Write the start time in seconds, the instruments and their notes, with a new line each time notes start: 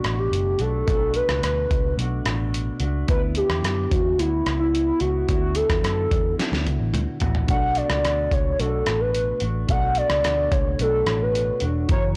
Already playing: clean electric guitar B2 A3 D4 F#4, soft synth lead F#4
0.04 picked electric bass A1, cross-stick, closed hi-hat
0.19 soft synth lead G4
0.31 picked electric bass F#1, closed hi-hat
0.59 picked electric bass B1, clean electric guitar A3 D4 F#4, soft synth lead A4, closed hi-hat
0.86 picked electric bass B1, clean electric guitar B2 A3 D4, soft synth lead A4, kick, closed hi-hat
0.90 clean electric guitar F#4
1.14 soft synth lead B4, closed hi-hat
1.29 picked electric bass C#2, cross-stick
1.42 picked electric bass D2, soft synth lead B4, cross-stick, closed hi-hat
1.71 picked electric bass C#2, kick, closed hi-hat
1.97 picked electric bass B1, clean electric guitar B2 A3 D4 F#4, closed hi-hat
2.25 picked electric bass A1, cross-stick, closed hi-hat
2.54 closed hi-hat
2.80 picked electric bass C#2, clean electric guitar A3 D4 F#4, closed hi-hat
3.07 picked electric bass D2, clean electric guitar D3 B3 E4, soft synth lead B4, kick, closed hi-hat
3.35 soft synth lead G4, closed hi-hat
3.49 picked electric bass E2, cross-stick
3.63 picked electric bass F#2, cross-stick, closed hi-hat
3.91 picked electric bass E2, soft synth lead F#4, kick, closed hi-hat
4.19 picked electric bass D2, clean electric guitar B3 E4 F#4, soft synth lead E4, closed hi-hat
4.46 picked electric bass C#2, cross-stick, closed hi-hat
4.59 soft synth lead E4
4.75 closed hi-hat
5.00 picked electric bass C#2, clean electric guitar B3 E4 F#4, soft synth lead F#4, closed hi-hat
5.27 picked electric bass D2, clean electric guitar D3 B3 E4, soft synth lead F#4, kick, closed hi-hat
5.32 clean electric guitar F#4
5.55 soft synth lead A4, closed hi-hat
5.70 picked electric bass E2, kick, cross-stick
5.83 picked electric bass F#2, soft synth lead A4, cross-stick, closed hi-hat
6.11 picked electric bass E2, kick, closed hi-hat
6.38 clean electric guitar D3 B3 E4 F#4, snare, closed hi-hat
6.52 picked electric bass D2, snare
6.65 picked electric bass C#2, closed hi-hat, high tom
6.80 picked electric bass A1
6.93 picked electric bass D2, closed hi-hat, mid tom
7.20 picked electric bass A1, clean electric guitar B3 E4 F#4, closed hi-hat, floor tom
7.35 floor tom
7.46 picked electric bass B1, clean electric guitar B2 A3, tine electric piano D4 F#4 A4, soft synth lead F#5, kick, closed hi-hat
7.50 clean electric guitar D4 F#4, tine electric piano D5
7.75 soft synth lead D5, closed hi-hat
7.90 picked electric bass C#2, cross-stick
8.05 picked electric bass D2, cross-stick, closed hi-hat
8.31 picked electric bass C#2, soft synth lead C#5, kick, closed hi-hat
8.58 picked electric bass B1, clean electric guitar B2 A3 D4 F#4, soft synth lead A4, closed hi-hat
8.86 picked electric bass A1, cross-stick, closed hi-hat
9.01 soft synth lead B4
9.15 closed hi-hat
9.40 picked electric bass A1, clean electric guitar A3 D4 F#4, closed hi-hat
9.67 picked electric bass B1, clean electric guitar B2 A3 D4, tine electric piano D4 F#4 A4, soft synth lead F#5, kick, closed hi-hat
9.72 clean electric guitar F#4, tine electric piano D5
9.95 soft synth lead D5, closed hi-hat
10.10 picked electric bass C#2, cross-stick
10.24 picked electric bass D2, cross-stick, closed hi-hat
10.51 picked electric bass C#2, soft synth lead C#5, kick, closed hi-hat
10.78 picked electric bass B1, clean electric guitar B2 A3 D4 F#4, soft synth lead A4, closed hi-hat
11.06 picked electric bass A1, tine electric piano D4 F#4 A4 C#5, cross-stick, closed hi-hat
11.22 soft synth lead B4
11.35 closed hi-hat
11.60 picked electric bass E1, clean electric guitar A3 D4 F#4, closed hi-hat
11.88 picked electric bass F#1, clean electric guitar F#2 E3, tine electric piano E4 F#4 A#5, soft synth lead C#5, kick, closed hi-hat
11.93 clean electric guitar C#4, tine electric piano C#5